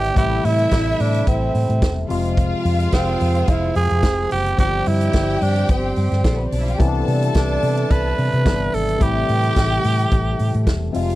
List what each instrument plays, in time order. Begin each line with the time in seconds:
Already playing: french horn section C3 B4 D5 E5, tine electric piano D3 G3 C4 E4 B4, tenor saxophone G4
0.04 closed hi-hat
0.15 fingered electric bass A1, tine electric piano C3 E3 G3 A3 E4, string section E4 E5, tenor saxophone G4, french horn section A4, kick, closed hi-hat
0.45 fingered electric bass A2, tenor saxophone E4, open hi-hat
0.59 closed hi-hat
0.71 fingered electric bass A1, kick, snare, closed hi-hat
1.00 fingered electric bass A2, tenor saxophone D4, open hi-hat
1.14 closed hi-hat
1.27 fingered electric bass A1, tenor saxophone C4, kick, closed hi-hat
1.55 fingered electric bass A2, open hi-hat
1.70 fingered electric bass A2, closed hi-hat
1.82 fingered electric bass E1, kick, snare, closed hi-hat
2.08 fingered electric bass F1, tine electric piano C3 F3 G#3 F4, string section F4 F5, french horn section G#4 C5, open hi-hat
2.25 closed hi-hat
2.37 kick, closed hi-hat
2.65 fingered electric bass F2, open hi-hat
2.80 closed hi-hat
2.92 fingered electric bass F1, tenor saxophone C4, kick, snare, closed hi-hat
3.20 fingered electric bass F2, open hi-hat
3.35 closed hi-hat
3.48 fingered electric bass F1, tenor saxophone E4, kick, closed hi-hat
3.75 fingered electric bass F2, tenor saxophone G#4, open hi-hat
3.90 fingered electric bass F2, closed hi-hat
4.03 fingered electric bass F1, kick, snare, closed hi-hat
4.31 fingered electric bass F#1, tenor saxophone G4, open hi-hat
4.46 closed hi-hat
4.57 fingered electric bass G1, tine electric piano D3 F3 G3 C4 G4, string section G4 G5, tenor saxophone G4, french horn section D5, kick, closed hi-hat
4.86 fingered electric bass G2, tenor saxophone E4, open hi-hat
5.01 closed hi-hat
5.13 fingered electric bass G1, kick, snare, closed hi-hat
5.41 fingered electric bass G2, tenor saxophone D4, open hi-hat
5.56 closed hi-hat
5.69 fingered electric bass G1, tenor saxophone C4, kick, closed hi-hat
5.96 fingered electric bass G2, open hi-hat
6.12 fingered electric bass G2, snare, closed hi-hat
6.24 fingered electric bass A#1, kick, snare, closed hi-hat
6.31 string section A3 A4
6.38 string section B3 B4
6.45 string section C4 C5
6.52 fingered electric bass B1, string section D4 D5, open hi-hat
6.59 string section E4 E5
6.66 string section F4 F5, closed hi-hat
6.72 string section G4 G5
6.79 fingered electric bass C2, tine electric piano C3 E3 G3 B3 C#4, string section A4 A5, french horn section B4 E5, kick, closed hi-hat
6.88 tine electric piano D4
7.08 fingered electric bass C3, open hi-hat
7.22 closed hi-hat
7.34 fingered electric bass C2, tenor saxophone D4, kick, snare, closed hi-hat
7.62 fingered electric bass C3, open hi-hat
7.77 closed hi-hat
7.90 fingered electric bass C2, tenor saxophone B4, kick, closed hi-hat
8.18 fingered electric bass C3, open hi-hat
8.33 fingered electric bass C3, closed hi-hat
8.44 fingered electric bass G1, tine electric piano C3 E3 G3 B3 D4, kick, snare, closed hi-hat
8.74 fingered electric bass G#1, tenor saxophone A4, open hi-hat
8.89 closed hi-hat
8.99 fingered electric bass A1, tine electric piano C3 E3 G3 A3 E4, french horn section G4 A4, string section G4 G5, tenor saxophone G4, kick, closed hi-hat
9.29 fingered electric bass A2, open hi-hat
9.43 closed hi-hat
9.56 fingered electric bass A1, kick, snare, closed hi-hat
9.84 fingered electric bass A2, open hi-hat
9.99 closed hi-hat
10.11 fingered electric bass A1, kick, closed hi-hat
10.39 fingered electric bass A2, open hi-hat
10.54 fingered electric bass A2, closed hi-hat
10.67 fingered electric bass E1, kick, snare, closed hi-hat
10.92 fingered electric bass F1, tine electric piano C3 F3 G#3 F4, string section F4 F5, french horn section F4 G#4 F5, open hi-hat
11.10 closed hi-hat